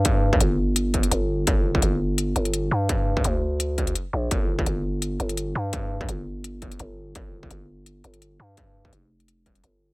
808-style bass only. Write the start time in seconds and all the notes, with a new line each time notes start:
Already playing: G2
0.41 G1
1.11 G1
1.47 G1
1.82 G1
2.36 G1
2.71 G2
3.25 D2
4.13 A#1
4.31 G1
4.66 G1
5.20 G1
5.55 G2
6.09 G1
6.80 G1
7.16 G1
7.51 G1
8.04 G1
8.40 G2
8.93 F1
9.42 E1
9.64 G1